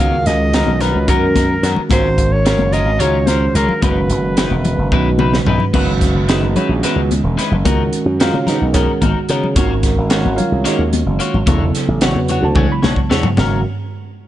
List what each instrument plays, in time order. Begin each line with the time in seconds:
Already playing: soprano saxophone F5
0.00 slap bass C#2, tine electric piano D#3 G#3 C#4 F#4 A#4, clean electric guitar F#3 B3 D#4 A#4
0.26 slap bass C#2, soprano saxophone D#5, snare, closed hi-hat
0.53 tine electric piano D#3 G#3 C#4 F#4 A#4, clean electric guitar F#3 B3 D#4 A#4, snare, closed hi-hat
0.67 slap bass B1, high conga
0.81 clean electric guitar B3 D#4 A#4, soprano saxophone B4, snare, closed hi-hat, low conga
0.95 slap bass C#2
1.08 slap bass F#2, tine electric piano D#3 G#3 C#4 F#4 A#4, clean electric guitar F#3 B3 D#4 A#4, soprano saxophone A#4, kick, closed hi-hat
1.35 clean electric guitar B3 D#4 A#4, kick, snare, closed hi-hat, high conga
1.63 slap bass F#2, clean electric guitar F#3 B3 D#4 A#4, snare, closed hi-hat
1.76 muted slap bass stroke, low conga
1.89 slap bass G#1, tine electric piano D#3 G#3 C#4 F#4 A#4, clean electric guitar F#3 C#4 F4 A#4, soprano saxophone C5, kick, closed hi-hat, high conga
2.18 slap bass G#1, kick, closed hi-hat
2.32 soprano saxophone C#5
2.45 tine electric piano D#3 G#3 C#4 F#4 A#4, clean electric guitar F#3 C#4 F4 A#4, snare, closed hi-hat
2.58 slap bass F#1, high conga
2.73 clean electric guitar C#4 F4 A#4, soprano saxophone D#5, closed hi-hat, low conga
2.86 slap bass G#1
2.99 slap bass C#2, tine electric piano D#3 G#3 C#4 F#4 G#4, clean electric guitar F#3 C#4 F4 A#4, soprano saxophone C#5, closed hi-hat
3.27 clean electric guitar C#4 F4 A#4, soprano saxophone C5, snare, closed hi-hat, high conga
3.54 slap bass C#2, clean electric guitar F#3 C#4 F4 A#4, soprano saxophone A#4, closed hi-hat
3.68 muted slap bass stroke, low conga
3.82 slap bass F#1, tine electric piano D#3 G#3 C#4 F#4 B4, clean electric guitar G#3 D#4 E4 B4, soprano saxophone B4, kick, closed hi-hat, high conga, low conga
3.97 low conga
4.10 slap bass F#1, closed hi-hat, low conga
4.37 tine electric piano D#3 G#3 C#4 F#4 B4, clean electric guitar G#3 D#4 E4 B4, snare, closed hi-hat
4.51 slap bass E1, high conga
4.65 closed hi-hat, low conga
4.78 slap bass F#1
4.92 slap bass B1, tine electric piano D#3 G#3 C#4 F#4 B4, clean electric guitar G#3 D#4 E4 B4, kick, low conga
5.19 clean electric guitar D#4 E4 B4, mid tom, high conga
5.33 snare, high conga
5.46 slap bass B1, clean electric guitar G#3 D#4 E4 B4, floor tom, low conga
5.60 low conga
5.74 slap bass F#1, tine electric piano D#3 G#3 C#4 F#4 B4, clean electric guitar G#3 D#4 E4 B4, kick, crash, high conga
6.01 kick, snare, closed hi-hat
6.15 slap bass F#1
6.29 tine electric piano D#3 G#3 C#4 D#4 F#4 G#4 B4 D#5, clean electric guitar G#3 D#4 E4 B4, snare, closed hi-hat
6.42 slap bass F#1, high conga
6.56 tine electric piano C#4 F#4 G#4 C#5, clean electric guitar D#4 E4 B4, closed hi-hat, low conga
6.69 slap bass A#1
6.83 tine electric piano D#3 G#3 B3 C#4 F#4 G#4 B4, clean electric guitar G#3 D#4 E4 B4, snare, closed hi-hat, low conga
6.96 slap bass C#2, low conga
7.11 closed hi-hat, high conga
7.23 slap bass E1
7.38 clean electric guitar G#3 D#4 E4 B4, snare, closed hi-hat
7.51 slap bass F#1, low conga
7.64 slap bass C#2, tine electric piano D#3 G#3 C#4 F#4 A#4, clean electric guitar B3 D#4 F#4 A#4, kick, closed hi-hat, high conga
7.93 closed hi-hat
8.06 slap bass F#2
8.20 tine electric piano D#3 G#3 C#4 F4 F#4 G#4 F5, clean electric guitar B3 D#4 F#4 A#4, snare, closed hi-hat
8.33 slap bass C#3, high conga
8.47 clean electric guitar D#4 F#4 A#4, tine electric piano D#4 A#4 B4 D#5, snare, closed hi-hat, low conga
8.61 slap bass B1
8.73 tine electric piano D#3 G#3 C#4 F#4 G#4 A#4 C#5, clean electric guitar B3 D#4 F#4 A#4, kick, snare, closed hi-hat, low conga
8.89 low conga
9.01 slap bass G#1, clean electric guitar D#4 F#4 A#4, kick, closed hi-hat, high conga
9.29 slap bass C#3, clean electric guitar B3 D#4 F#4 A#4, closed hi-hat
9.44 low conga
9.56 slap bass G#1, tine electric piano D#3 G#3 C#4 F#4 A#4, clean electric guitar A#3 F4 F#4 C#5, kick, closed hi-hat, high conga
9.83 kick, snare, closed hi-hat
9.98 slap bass G#1
10.10 tine electric piano D#3 G#3 C#4 F#4 A#4 C#5 D#5 F#5, clean electric guitar A#3 F4 F#4 C#5, snare, closed hi-hat
10.25 slap bass G#1, high conga
10.36 tine electric piano F4 A#4 C#5 F5, closed hi-hat, low conga
10.52 slap bass C2
10.65 tine electric piano D#3 G#3 C#4 D#4 F#4 G#4 A#4 C#5 D#5, clean electric guitar A#3 F4 F#4 C#5, snare, closed hi-hat, low conga
10.79 slap bass D#2
10.93 closed hi-hat, high conga
11.06 slap bass F#1
11.19 clean electric guitar A#3 F4 F#4 C#5, closed hi-hat
11.34 slap bass G#1, low conga
11.46 slap bass E1, tine electric piano C#3 F#3 B3 E4 A4, clean electric guitar A3 D4 F#4 C#5, kick, closed hi-hat, high conga
11.75 snare, closed hi-hat
11.88 slap bass A1
12.01 tine electric piano C#3 F#3 B3 E4 F#4, clean electric guitar A3 D4 F#4 C#5, snare, closed hi-hat
12.15 slap bass E2, high conga
12.28 clean electric guitar D4 F#4 C#5, tine electric piano F#5, closed hi-hat, low conga
12.42 slap bass D2, tine electric piano A5
12.55 tine electric piano C#3 F#3 G#3 B3 E4 G#5, clean electric guitar A3 D4 F#4 C#5, kick, high tom
12.72 tine electric piano B5
12.82 slap bass B1, clean electric guitar D4 F#4 C#5, tine electric piano A5, snare, high conga
12.96 kick, low conga
13.10 slap bass E2, clean electric guitar A3 D4 F#4 C#5, snare, low conga
13.23 floor tom, low conga
13.37 slap bass F#1, tine electric piano D#3 G#3 C#4 F#4 A#4, clean electric guitar C#4 F#4 A#4, snare, floor tom, high conga